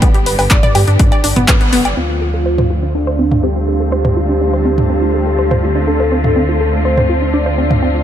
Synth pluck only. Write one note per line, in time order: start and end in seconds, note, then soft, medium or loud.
0.02 0.07 B3 loud
0.14 0.22 G4 medium
0.26 0.34 B4 medium
0.39 0.43 B4 medium
0.51 0.59 D5 loud
0.63 0.71 D5 loud
0.75 0.80 G4 medium
0.88 0.98 D4 medium
0.99 1.07 D4 medium
1.12 1.20 D5 loud
1.24 1.32 D4 medium
1.36 1.41 B3 loud
1.48 1.53 B3 loud
1.61 1.65 B3 medium
1.73 1.81 B3 loud
1.85 1.96 D5 medium
1.97 2.02 C4 medium
2.10 2.17 F4 medium
2.21 2.29 A4 medium
2.34 2.38 A4 medium
2.46 2.54 C5 loud
2.58 2.66 C5 loud
2.70 2.75 F4 medium
2.83 2.93 D4 medium
2.95 3.03 D4 medium
3.07 3.15 C5 loud
3.19 3.31 C4 loud
3.32 3.39 F5 medium
3.43 3.48 C4 loud
3.56 3.64 F4 medium
3.68 3.76 A4 medium
3.80 3.85 A4 medium
3.92 4.00 C5 loud
4.05 4.12 C5 loud
4.17 4.21 F4 medium
4.29 4.40 D4 medium
4.41 4.49 D4 medium
4.54 4.61 C5 loud
4.65 4.77 C4 loud
4.78 4.85 F5 medium
4.90 4.95 C4 loud
5.02 5.10 F4 medium
5.14 5.22 A4 medium
5.27 5.31 A4 medium
5.38 5.46 C5 loud
5.51 5.59 C5 loud
5.63 5.68 F4 medium
5.75 5.86 D4 medium
5.87 5.95 D4 medium
6.00 6.07 C5 loud
6.12 6.24 C4 loud
6.24 6.32 F5 medium
6.36 6.41 C4 loud
6.49 6.56 F4 medium
6.61 6.69 A4 medium
6.73 6.78 A4 medium
6.85 6.93 C5 medium
6.98 7.05 C5 loud
7.09 7.14 F4 medium
7.22 7.32 D4 medium
7.34 7.42 D4 medium
7.46 7.54 C5 loud
7.58 7.70 C4 medium
7.71 7.78 F5 medium
7.82 7.87 C4 loud
7.95 8.03 F4 medium